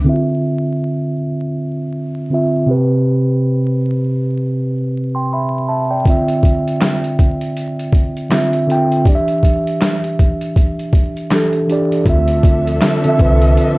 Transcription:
0.05 tine electric piano D3 C4 E4
0.09 tine electric piano E5
0.14 tine electric piano F4
2.30 tine electric piano D3 C4 F4
2.34 tine electric piano E5
2.66 tine electric piano C3 C4 G4
2.71 tine electric piano B4
5.15 tine electric piano G5 C6
5.33 tine electric piano E5 B5
5.69 tine electric piano E5 A5
5.91 tine electric piano D5 G5
6.05 tine electric piano D3 C4 F4, kick, closed hi-hat
6.10 tine electric piano E5
6.28 closed hi-hat
6.43 kick, closed hi-hat
6.68 closed hi-hat
6.81 snare, clap, closed hi-hat
7.04 closed hi-hat
7.19 kick, closed hi-hat
7.41 closed hi-hat
7.57 closed hi-hat
7.79 closed hi-hat
7.93 kick, closed hi-hat
8.17 closed hi-hat
8.30 tine electric piano D3 C4 F4, snare, clap, closed hi-hat
8.34 tine electric piano E5
8.53 closed hi-hat
8.67 tine electric piano D3 C4 F4, closed hi-hat
8.72 tine electric piano G5
8.92 closed hi-hat
9.04 tine electric piano E3 D4 G4, kick, closed hi-hat
9.09 tine electric piano D5
9.15 tine electric piano E5
9.28 closed hi-hat
9.43 kick, closed hi-hat
9.67 closed hi-hat
9.81 snare, clap, closed hi-hat
10.04 closed hi-hat
10.19 kick, closed hi-hat
10.41 closed hi-hat
10.56 kick, closed hi-hat
10.79 closed hi-hat
10.93 kick, closed hi-hat
11.17 closed hi-hat
11.30 tine electric piano E3 D4 G4, snare, clap, closed hi-hat
11.35 tine electric piano A4
11.53 closed hi-hat
11.67 tine electric piano E3 D4 G4, closed hi-hat
11.72 tine electric piano D5
11.92 closed hi-hat
12.04 upright bass D2, tine electric piano D3 C4 F4, string section F3 C4 D4 A4 E5, kick, closed hi-hat
12.09 tine electric piano E5
12.28 closed hi-hat
12.43 kick, closed hi-hat
12.67 closed hi-hat
12.81 snare, clap, closed hi-hat
13.04 tine electric piano D3 C4 F4, closed hi-hat
13.09 tine electric piano E5
13.17 upright bass C2, tine electric piano D3 C4 F4, kick, closed hi-hat
13.22 tine electric piano B4
13.42 closed hi-hat
13.57 closed hi-hat

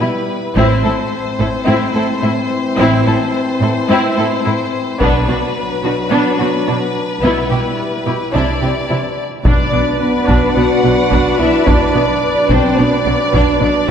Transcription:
Already playing: french horn section G3 E4, violin section B4
0.00 cello section B2, viola section E4, violin section E4
0.56 double bass section A1, cello section A2, french horn section E3 C4, violin section C4 C5, viola section E4, taiko
0.83 cello section A2, viola section E4, violin section A4
1.39 cello section A2, viola section E4, violin section A4, taiko
1.66 cello section A2, violin section C4, viola section E4
1.95 cello section A2, viola section E4, violin section A4
2.22 cello section A2, violin section E4, viola section E4
2.78 double bass section A1, cello section A2, violin section C4, viola section E4
3.06 cello section A2, viola section E4, violin section A4
3.61 cello section A2, viola section E4, violin section A4
3.89 cello section A2, violin section C4, viola section E4
4.18 cello section A2, viola section E4, violin section A4
4.45 cello section A2, viola section E4, violin section E4
5.00 double bass section B1, cello section B2, french horn section F#3 D4, violin section B3 B4, viola section D4, taiko
5.28 cello section B2, viola section D4, violin section F#4
5.84 cello section B2, viola section D4, violin section F#4
6.10 cello section B2, violin section B3, viola section D4
6.39 cello section B2, viola section D4, violin section F#4
6.67 cello section B2, violin section D4, viola section D4
7.22 double bass section B1, cello section B2, french horn section G3 E4, violin section B3, viola section E4
7.50 cello section B2, viola section E4, violin section G4
8.06 cello section B2, viola section E4, violin section G4
8.33 double bass section C2, cello section C3, french horn section E3 D4, violin section D4 D5, viola section E4
8.61 cello section C3, viola section E4, violin section G4
8.89 cello section C3, violin section E4, viola section E4
9.44 double bass section B1, cello section B2, trombone section F#3 D4, viola section D4 B4, french horn section D4, violin section D5, taiko
9.72 double bass section B1, cello section B2, viola section B3
10.01 french horn section B3, violin section B4
10.27 double bass section B1, cello section B2, viola section D4, taiko
10.55 double bass section B1, cello section B2, viola section B3, french horn section F#4, violin section F#5
10.83 double bass section B1, cello section B2, viola section F#3
11.11 double bass section B1, cello section B2, viola section D4, taiko
11.39 double bass section B1, cello section B2, viola section B3, french horn section E4, violin section E5
11.66 double bass section B1, cello section B2, viola section D4, french horn section D4, violin section D5, taiko
11.94 double bass section B1, cello section B2, viola section B3
12.49 double bass section B1, cello section B2, french horn section C4, viola section D4, violin section C5, taiko
12.77 double bass section B1, cello section B2, viola section B3, french horn section D4, violin section D5
13.06 double bass section B1, cello section B2, viola section F#3
13.33 double bass section B1, cello section B2, viola section D4, taiko
13.61 double bass section B1, cello section B2, viola section B3, french horn section D4, violin section D5

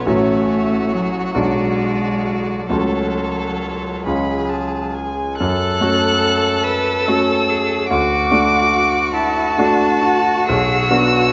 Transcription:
Already playing: grand piano B1 G#3 C#4 F4, violin C#5
0.06 grand piano A1 F#3 C#4 F#4, cello A3, violin F#4
0.92 cello F#3
1.35 grand piano B1 F#3 D4 F#4, cello G#3, violin D5
2.70 grand piano C#2 A3 C#4 F#4, cello F#3, violin A4 C#5
4.06 grand piano C#2 G#3 C#4 F4, violin G#4 B5
4.49 violin A5
4.94 violin G#5
5.37 grand piano F#2, cello A4, violin A4 F#6
5.81 grand piano A3 C#4 F#4
6.63 cello B4, violin E6
7.06 grand piano A3 C#4 F#4, cello A4
7.50 cello G#4
7.88 grand piano D2, violin F#4 D6, cello F#4
8.31 grand piano A3 D4 F#4
9.13 cello E4, violin A5
9.58 grand piano A3 D4 F#4, cello D4
10.03 cello F#4
10.47 grand piano B1, cello G#4, violin E6
10.90 grand piano B3 D4 F#4, cello F#4

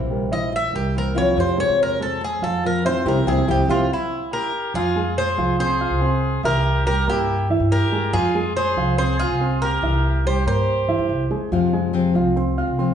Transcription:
Already playing: nylon-string guitar C3 E3 A#3 C4 E4
0.00 upright bass A#1
0.10 grand piano G3 G4 A#4
0.31 grand piano E3 E4 E5, cuban tres D#5
0.52 muted nylon-string guitar stroke
0.56 cuban tres E5
0.73 upright bass C2, grand piano G3 G4 A#4, cuban tres G4
0.94 nylon-string guitar E3 A#3 C4 E4
0.98 cuban tres A#4
1.15 nylon-string guitar E3 A#3 C4 E4, grand piano F3 F4 F5, cuban tres C#5
1.36 upright bass F2, nylon-string guitar C3 G#3 C4 F4, cuban tres C5
1.58 grand piano G#3 G#4 C5, cuban tres C#5
1.68 upright bass E2
1.83 cuban tres A#4
2.00 grand piano G#3 G#4 C5, cuban tres A4
2.21 cuban tres G#4, muted nylon-string guitar stroke
2.42 upright bass F2, grand piano F3 F4 F5, cuban tres A4
2.64 nylon-string guitar F3 G#3 C4 F4, cuban tres A#4
2.84 grand piano E3 E4 E5, nylon-string guitar F3 G#3 C4 F4, cuban tres C5
3.05 upright bass C2, nylon-string guitar G3 A#3 C4, grand piano C4 E4 G4, cuban tres A#4
3.26 upright bass C2, nylon-string guitar G3 A#3 C4, grand piano C4 E4 G4, cuban tres G#4
3.47 upright bass C2, nylon-string guitar G3 A#3 C4, grand piano C4 E4 G4, cuban tres G4
3.68 upright bass C2, nylon-string guitar G3 A#3 C4, grand piano C4 E4 G4, cuban tres F4
3.93 cuban tres E4
4.32 trumpet G4, cuban tres A#4
4.74 upright bass F2, grand piano F3 F4 F5, trumpet F4, cuban tres G#4
4.96 grand piano G#3 G#4 G#5
5.17 trumpet G#4, cuban tres C5
5.37 upright bass C2, grand piano F3 F4 F5
5.59 grand piano C4 C5 C6, trumpet G#4, cuban tres C5
5.80 grand piano F4 F5 F6
5.90 upright bass C2
6.01 grand piano C4 C5 C6
6.43 upright bass C2, grand piano E3 E4 E5, trumpet G4, cuban tres A#4
6.86 grand piano G3 G4 G5, trumpet G4, cuban tres A#4
7.07 upright bass G2, grand piano A#3 A#4 A#5, trumpet E4, cuban tres G4
7.50 grand piano E3 E4 E5
7.60 upright bass G2
7.71 trumpet G4, cuban tres A#4
7.92 grand piano G#3 G#4 G#5
8.13 upright bass F2, grand piano F3 F4 F5, trumpet F4, cuban tres G#4
8.35 grand piano G#3 G#4 G#5
8.56 trumpet G#4, cuban tres C5
8.77 upright bass C2, grand piano F3 F4 F5
8.98 grand piano C4 C5 C6, trumpet G#4, cuban tres C5
9.19 grand piano F4 F5 F6, trumpet F4, cuban tres G#4
9.29 upright bass C2
9.40 grand piano C4 C5 C6
9.62 trumpet G4, cuban tres A#4
9.82 upright bass C2, grand piano E3 E4 E5
10.25 grand piano G3 G4 G5, trumpet G4, cuban tres C5
10.46 upright bass G2, grand piano A#3 A#4 A#5, trumpet G4, cuban tres C5
10.88 grand piano E3 E4 E5
10.98 upright bass G2
11.09 upright bass C2
11.31 upright bass E2, grand piano G#3 G#4 G#5
11.52 upright bass F2, nylon-string guitar C3 F3 G#3 C4 F4, grand piano F3 F4 F5
11.73 grand piano G#3 G#4 G#5
11.93 nylon-string guitar C3 F3 G#3 C4 F4
12.15 upright bass C2, grand piano F3 F4 F5, nylon-string guitar G#3 C4 F4
12.36 grand piano C4 C5 C6, muted nylon-string guitar stroke
12.57 nylon-string guitar G#3 C4 F4, grand piano F4 F5 F6
12.67 upright bass C2
12.78 nylon-string guitar F3 G#3 C4 F4, grand piano C4 C5 C6

